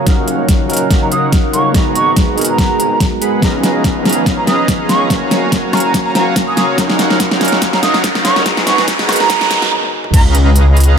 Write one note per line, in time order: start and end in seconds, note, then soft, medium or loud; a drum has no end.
0.00 1.71 C#3 medium
0.00 1.71 F#3 medium
0.05 0.89 D#1 medium
0.05 0.66 F#3 medium
0.05 0.67 C#4 medium
0.05 0.67 D#4 medium
0.05 0.88 D#4 medium
0.05 1.73 D#4 medium
0.05 0.88 A#4 medium
0.05 0.68 A#4 medium
0.05 0.88 C#5 medium
0.05 0.88 F5 medium
0.05 0.88 F#5 medium
0.05 kick loud
0.05 snare medium
0.05 closed hi-hat medium
0.28 closed hi-hat medium
0.49 kick loud
0.49 snare medium
0.49 closed hi-hat medium
0.67 1.71 F#3 medium
0.67 1.72 C#4 medium
0.67 1.72 D#4 medium
0.67 1.73 A#4 loud
0.67 closed hi-hat medium
0.73 closed hi-hat medium
0.77 closed hi-hat medium
0.91 1.10 D#2 loud
0.91 1.09 D#4 medium
0.91 1.09 A#4 medium
0.91 1.09 C#5 medium
0.91 1.09 F5 medium
0.91 1.09 F#5 medium
0.91 kick medium
0.91 snare medium
0.91 closed hi-hat medium
1.02 1.10 A#5 medium
1.12 1.72 D#4 medium
1.12 1.72 A#4 medium
1.12 1.72 C#5 medium
1.12 1.72 F5 medium
1.12 1.72 F#5 medium
1.12 1.26 D#6 medium
1.12 closed hi-hat medium
1.32 kick loud
1.32 snare medium
1.32 closed hi-hat medium
1.53 1.73 D#1 loud
1.53 1.68 C#6 medium
1.53 closed hi-hat medium
1.72 2.57 G#1 medium
1.72 2.34 G#3 medium
1.72 2.56 G#3 medium
1.72 3.41 G#3 medium
1.72 2.35 B3 medium
1.72 3.41 B3 medium
1.72 2.35 D#4 medium
1.72 3.41 F#4 medium
1.72 2.36 F#4 medium
1.72 2.56 G#4 medium
1.72 2.56 B4 medium
1.72 2.56 F#5 medium
1.72 2.56 A#5 medium
1.72 2.36 A#5 medium
1.72 kick loud
1.72 snare medium
1.72 closed hi-hat medium
1.95 2.10 C#6 medium
1.95 closed hi-hat medium
2.17 kick loud
2.17 snare medium
2.17 closed hi-hat medium
2.35 3.39 G#3 medium
2.35 3.40 B3 medium
2.35 3.40 D#4 medium
2.35 3.41 F#4 medium
2.35 closed hi-hat soft
2.39 3.41 A#4 loud
2.39 closed hi-hat medium
2.45 closed hi-hat medium
2.49 3.07 A#5 loud
2.58 2.77 G#3 medium
2.58 2.77 G#4 medium
2.58 2.77 B4 medium
2.58 2.77 F#5 medium
2.58 2.77 A#5 medium
2.58 kick loud
2.58 snare medium
2.58 closed hi-hat medium
2.79 2.99 G#1 medium
2.79 closed hi-hat medium
3.00 kick loud
3.00 snare medium
3.00 closed hi-hat medium
3.21 3.40 G#3 medium
3.21 3.40 G#4 medium
3.21 3.40 B4 medium
3.21 3.40 F#5 medium
3.21 3.40 B5 medium
3.21 closed hi-hat medium
3.40 4.25 C#2 medium
3.40 5.09 D#3 medium
3.40 4.02 F3 medium
3.40 4.03 B3 medium
3.40 5.09 B3 medium
3.40 4.24 C#4 medium
3.40 4.03 C#4 medium
3.40 4.04 D#4 medium
3.40 4.24 G#4 medium
3.40 4.24 B4 medium
3.40 4.24 D#5 medium
3.40 4.24 F5 medium
3.40 4.24 A#5 medium
3.40 kick loud
3.40 snare medium
3.40 closed hi-hat medium
3.40 riser medium
3.45 4.04 A#5 medium
3.64 snare medium
3.64 closed hi-hat medium
3.84 kick medium
3.84 snare medium
3.84 closed hi-hat medium
4.03 5.07 F3 medium
4.03 5.08 B3 medium
4.03 5.08 C#4 medium
4.03 5.09 D#4 medium
4.03 5.09 A#5 loud
4.03 snare medium
4.03 closed hi-hat soft
4.09 closed hi-hat medium
4.12 closed hi-hat medium
4.26 4.46 G#1 medium
4.26 4.45 C#4 medium
4.26 4.45 G#4 medium
4.26 4.45 B4 medium
4.26 4.45 D#5 medium
4.26 4.45 F5 medium
4.26 4.45 A#5 medium
4.26 kick loud
4.26 snare medium
4.26 closed hi-hat medium
4.38 4.45 A#5 medium
4.47 5.08 C#4 medium
4.47 5.08 G#4 medium
4.47 5.08 B4 medium
4.47 5.08 D#5 medium
4.47 5.08 F5 medium
4.47 5.08 A#5 medium
4.47 4.62 D#6 medium
4.47 snare medium
4.47 closed hi-hat medium
4.68 kick loud
4.68 snare medium
4.68 closed hi-hat medium
4.89 5.09 C#2 loud
4.89 5.04 C#6 medium
4.89 snare medium
4.89 closed hi-hat medium
5.08 5.93 F#1 loud
5.08 8.43 C#3 medium
5.08 5.70 F#3 medium
5.08 6.77 F#3 medium
5.08 5.70 A#3 medium
5.08 5.71 C#4 medium
5.08 5.92 F#4 medium
5.08 5.72 A#4 medium
5.08 5.92 C#5 medium
5.08 5.92 F5 medium
5.08 5.71 F5 medium
5.08 5.92 G#5 medium
5.08 5.92 A#5 medium
5.08 kick loud
5.08 snare medium
5.08 closed hi-hat medium
5.31 snare medium
5.31 closed hi-hat medium
5.52 kick loud
5.52 snare medium
5.52 closed hi-hat medium
5.71 6.75 F#3 medium
5.71 6.75 A#3 medium
5.71 6.76 C#4 medium
5.71 6.77 A#4 loud
5.71 6.76 F5 medium
5.71 5.80 A#5 loud
5.71 snare medium
5.71 closed hi-hat soft
5.71 high woodblock medium
5.77 closed hi-hat medium
5.80 closed hi-hat medium
5.85 5.91 A#5 medium
5.94 6.13 F#4 medium
5.94 6.13 C#5 medium
5.94 6.13 F5 medium
5.94 6.13 G#5 medium
5.94 6.13 A#5 medium
5.94 kick loud
5.94 snare medium
5.94 closed hi-hat medium
6.05 6.12 A#5 medium
6.15 6.35 F#1 medium
6.15 6.76 F#4 medium
6.15 6.76 C#5 medium
6.15 6.76 F5 medium
6.15 6.76 G#5 medium
6.15 6.22 A#5 medium
6.15 6.76 A#5 medium
6.15 snare medium
6.15 closed hi-hat medium
6.36 kick loud
6.36 snare medium
6.36 closed hi-hat medium
6.47 6.54 D#6 medium
6.57 6.64 D#6 medium
6.57 snare medium
6.57 closed hi-hat medium
6.76 7.61 D#1 loud
6.76 7.38 F#3 medium
6.76 8.44 F#3 medium
6.76 7.38 C#4 medium
6.76 7.60 D#4 medium
6.76 7.39 D#4 medium
6.76 8.44 D#4 medium
6.76 7.60 A#4 medium
6.76 7.60 C#5 medium
6.76 7.60 F5 medium
6.76 7.60 F#5 medium
6.76 kick loud
6.76 snare medium
6.76 closed hi-hat medium
6.80 7.40 A#4 loud
6.90 snare medium
6.99 snare loud
6.99 closed hi-hat medium
7.10 snare medium
7.20 kick loud
7.20 snare medium
7.20 closed hi-hat medium
7.31 snare medium
7.39 8.43 F#3 medium
7.39 8.43 C#4 medium
7.39 8.44 D#4 medium
7.39 snare loud
7.39 closed hi-hat soft
7.43 8.45 A#4 loud
7.43 closed hi-hat medium
7.48 closed hi-hat medium
7.52 snare medium
7.62 7.81 D#2 loud
7.62 7.81 D#4 medium
7.62 7.81 A#4 medium
7.62 7.81 C#5 medium
7.62 7.81 F5 medium
7.62 7.81 F#5 medium
7.62 kick loud
7.62 snare medium
7.62 closed hi-hat medium
7.73 7.81 A#5 loud
7.73 snare medium
7.83 8.44 D#4 medium
7.83 8.44 A#4 medium
7.83 8.44 C#5 medium
7.83 8.44 F5 medium
7.83 8.44 F#5 medium
7.83 7.98 D#6 medium
7.83 snare medium
7.83 closed hi-hat medium
7.94 snare medium
8.04 kick loud
8.04 snare loud
8.04 closed hi-hat medium
8.15 snare medium
8.25 8.44 D#1 loud
8.25 8.40 C#6 loud
8.25 snare loud
8.25 closed hi-hat medium
8.36 snare medium
8.44 9.29 G#1 loud
8.44 9.71 B2 medium
8.44 9.06 G#3 medium
8.44 9.27 G#3 medium
8.44 9.71 G#3 medium
8.44 9.06 B3 medium
8.44 9.07 D#4 medium
8.44 9.71 F#4 medium
8.44 9.07 F#4 medium
8.44 9.27 G#4 medium
8.44 9.27 B4 medium
8.44 9.27 F#5 medium
8.44 9.27 A#5 medium
8.44 9.71 A#5 medium
8.44 9.08 A#5 medium
8.44 kick loud
8.44 snare loud
8.44 closed hi-hat medium
8.57 snare medium
8.67 8.82 C#6 medium
8.67 snare loud
8.67 closed hi-hat medium
8.78 snare medium
8.88 kick loud
8.88 snare loud
8.88 closed hi-hat medium
8.99 snare medium
9.07 9.71 G#3 medium
9.07 9.71 B3 medium
9.07 9.72 D#4 medium
9.07 9.72 F#4 medium
9.07 9.73 A#4 loud
9.07 snare loud
9.07 closed hi-hat medium
9.07 high woodblock medium
9.13 closed hi-hat medium
9.16 closed hi-hat medium
9.20 9.79 A#5 loud
9.20 snare loud
9.30 9.48 G#3 medium
9.30 9.49 G#4 medium
9.30 9.48 B4 medium
9.30 9.48 F#5 medium
9.30 9.49 A#5 medium
9.30 kick loud
9.30 snare loud
9.30 closed hi-hat medium
9.41 snare medium
9.51 snare loud
9.51 closed hi-hat medium
9.62 snare loud
9.72 high tom medium
9.83 high tom medium
10.04 mid tom medium
10.14 10.96 C#2 loud
10.14 10.95 C#4 medium
10.14 10.95 G#4 medium
10.14 10.95 B4 medium
10.14 10.95 D#5 medium
10.14 10.95 F5 medium
10.14 10.95 A#5 medium
10.14 kick loud
10.14 closed hi-hat medium
10.14 ride soft
10.14 crash loud
10.35 closed hi-hat medium
10.56 closed hi-hat medium
10.77 closed hi-hat medium
10.80 closed hi-hat medium
10.84 closed hi-hat medium